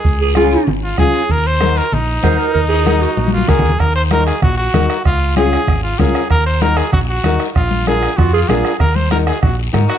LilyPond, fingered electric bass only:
\new Staff \with { instrumentName = "Fingered electric bass" } { \clef bass \time 4/4 \key ees \dorian \tempo 4 = 192 des,2 aes,,4 des,8 r8 | ees,2 bes,,4 ees,8 r8 | ees,2 bes,,4 des,8 ees,8 | ees,2 bes,,4 ees,8 r8 |
des,2 aes,,4 des,8 r8 | ees,2 bes,,4 ees,8 r8 | bes,,2 f,4 bes,,8 r8 | ees,2 bes,,4 aes,8 r8 | }